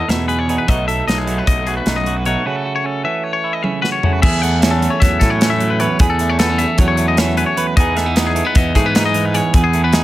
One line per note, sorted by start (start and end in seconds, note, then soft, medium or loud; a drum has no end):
0.00 0.47 E2 medium
0.00 0.67 E3 medium
0.00 0.47 B3 medium
0.00 0.27 A4 medium
0.08 0.57 E2 medium
0.08 0.66 B2 medium
0.08 0.48 D#4 soft
0.08 0.28 E5 medium
0.08 snare loud
0.08 closed hi-hat medium
0.28 0.47 G#4 soft
0.28 0.39 B4 medium
0.28 closed hi-hat soft
0.39 0.58 C#5 medium
0.48 0.68 E2 medium
0.48 0.65 B3 soft
0.48 0.66 D#4 medium
0.48 0.66 G#4 medium
0.48 closed hi-hat medium
0.58 0.68 B4 medium
0.67 1.00 B1 medium
0.67 2.24 B2 medium
0.67 1.27 A3 medium
0.67 1.07 D#4 medium
0.67 0.88 F#4 medium
0.67 0.87 D#5 medium
0.67 kick medium
0.67 closed hi-hat medium
0.88 1.68 A4 medium
0.88 1.07 E5 medium
0.88 closed hi-hat medium
1.07 1.40 B1 medium
1.07 1.86 D#4 medium
1.07 1.17 D#5 medium
1.07 snare medium
1.07 closed hi-hat medium
1.18 1.38 G#4 medium
1.27 3.03 F#3 medium
1.27 2.26 A3 medium
1.27 closed hi-hat medium
1.38 1.47 B4 medium
1.47 1.79 B1 medium
1.47 1.67 D#5 medium
1.47 kick medium
1.47 closed hi-hat medium
1.67 2.07 F#4 soft
1.67 1.76 G#4 medium
1.67 closed hi-hat medium
1.77 1.96 B4 medium
1.86 2.35 B1 medium
1.86 2.25 F#2 medium
1.86 2.26 D#4 medium
1.86 snare loud
1.86 closed hi-hat medium
1.96 2.17 D#5 medium
2.06 2.27 F#4 medium
2.06 closed hi-hat medium
2.17 2.26 B4 medium
2.25 2.45 B2 medium
2.25 2.45 A3 medium
2.25 2.43 D#4 medium
2.25 2.47 F#4 medium
2.25 2.46 C#5 medium
2.25 closed hi-hat medium
2.45 3.04 C#3 medium
2.45 3.04 A3 medium
2.45 2.83 C#4 soft
2.45 2.64 F#4 medium
2.45 2.56 B4 medium
2.56 2.75 A4 medium
2.65 3.44 F#4 medium
2.76 2.86 C#5 medium
2.84 3.63 C#4 medium
2.84 3.04 A4 medium
3.04 5.01 E3 medium
3.04 4.02 A3 medium
3.04 3.24 E5 medium
3.24 3.32 C#5 medium
3.33 3.53 C#5 medium
3.44 3.82 E4 soft
3.53 3.63 D#5 medium
3.63 4.02 C#3 medium
3.63 4.03 C#4 soft
3.63 3.82 E5 medium
3.63 high tom medium
3.82 4.03 F#4 soft
3.82 3.92 B4 medium
3.82 snare medium
3.92 4.13 C#5 medium
4.03 4.20 C#3 medium
4.03 4.42 A3 soft
4.03 4.21 C#4 medium
4.03 4.21 F#4 medium
4.03 floor tom medium
4.13 4.22 B4 medium
4.22 5.79 E2 medium
4.22 4.87 E2 loud
4.22 5.80 G#4 medium
4.22 4.42 E5 medium
4.22 kick loud
4.22 crash loud
4.42 4.82 A3 medium
4.42 4.61 F#5 medium
4.42 closed hi-hat medium
4.61 5.40 C#4 medium
4.61 4.71 E5 medium
4.61 snare loud
4.61 closed hi-hat medium
4.71 4.91 A4 medium
4.82 5.21 A3 medium
4.82 closed hi-hat medium
4.90 5.01 C#5 medium
5.00 5.18 E2 medium
5.00 5.60 F#3 medium
5.00 5.20 E5 medium
5.00 kick medium
5.00 snare soft
5.00 closed hi-hat medium
5.20 5.85 A2 medium
5.20 6.20 A3 medium
5.20 5.30 A4 medium
5.20 kick medium
5.20 snare soft
5.20 closed hi-hat medium
5.30 5.50 C#5 medium
5.41 5.98 C#4 medium
5.41 snare loud
5.41 closed hi-hat medium
5.50 5.70 E5 medium
5.60 6.03 F#3 medium
5.60 closed hi-hat medium
5.70 5.80 B4 medium
5.80 5.99 E2 medium
5.80 5.98 B4 medium
5.80 6.00 C#5 medium
5.80 closed hi-hat medium
5.99 6.64 E2 medium
5.99 7.56 E2 medium
5.99 7.57 G#4 medium
5.99 6.09 B4 medium
5.99 kick loud
5.99 closed hi-hat medium
6.10 6.29 A4 medium
6.19 6.59 A3 medium
6.19 closed hi-hat medium
6.29 6.39 C#5 medium
6.39 6.50 B3 medium
6.39 6.59 A4 medium
6.39 snare loud
6.39 closed hi-hat medium
6.50 7.17 C#4 medium
6.58 6.97 A3 medium
6.58 6.78 E5 medium
6.58 closed hi-hat medium
6.78 7.43 E2 medium
6.78 7.37 F#3 medium
6.78 6.87 C#5 medium
6.78 kick medium
6.78 closed hi-hat medium
6.88 7.08 C#5 medium
6.97 7.77 A3 medium
6.97 closed hi-hat medium
7.08 7.18 D#5 medium
7.17 7.75 C#4 medium
7.17 7.37 E5 medium
7.17 snare loud
7.17 closed hi-hat medium
7.37 7.77 F#3 medium
7.37 7.46 B4 medium
7.37 closed hi-hat medium
7.46 7.67 C#5 medium
7.57 7.77 E2 medium
7.57 7.75 B4 medium
7.57 closed hi-hat medium
7.67 7.76 B4 medium
7.77 8.41 E2 loud
7.77 9.33 E2 medium
7.77 8.55 E3 medium
7.77 7.96 B3 medium
7.77 8.16 D#4 medium
7.77 9.34 G#4 medium
7.77 7.97 D#5 medium
7.77 kick loud
7.77 closed hi-hat loud
7.96 8.06 A3 medium
7.96 8.16 E5 medium
7.96 snare soft
7.96 closed hi-hat medium
8.06 8.35 B3 soft
8.16 8.95 D#4 medium
8.16 8.26 D#5 medium
8.16 snare loud
8.16 closed hi-hat medium
8.27 8.46 G#4 medium
8.35 8.45 A3 medium
8.35 closed hi-hat medium
8.45 8.75 B3 soft
8.45 8.56 B4 medium
8.55 8.72 E2 medium
8.55 9.14 E3 medium
8.55 8.76 D#5 medium
8.55 kick loud
8.55 closed hi-hat medium
8.75 9.40 G#2 loud
8.75 8.86 A3 medium
8.75 8.85 G#4 medium
8.75 kick medium
8.75 snare soft
8.75 closed hi-hat medium
8.86 9.54 B3 medium
8.86 9.05 B4 medium
8.95 9.52 D#4 medium
8.95 snare loud
8.95 closed hi-hat medium
9.06 9.25 D#5 medium
9.14 10.04 E3 medium
9.14 closed hi-hat medium
9.25 9.35 B4 medium
9.33 9.97 E2 medium
9.33 9.55 G#4 medium
9.33 9.54 C#5 medium
9.33 closed hi-hat medium
9.54 10.04 E2 medium
9.54 10.04 G#4 medium
9.54 9.63 B4 medium
9.54 kick loud
9.54 closed hi-hat medium
9.64 9.83 G#4 medium
9.73 9.84 A3 medium
9.73 closed hi-hat medium
9.84 10.04 B3 soft
9.84 9.94 B4 medium
9.93 10.04 D#4 medium
9.93 10.04 G#4 medium
9.93 snare loud
9.93 closed hi-hat medium